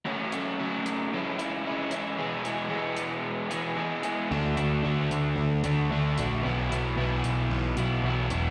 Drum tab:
HH |-x-x-x-x|-x-x-x-x|-x-x-x-x|-x-x-x-x|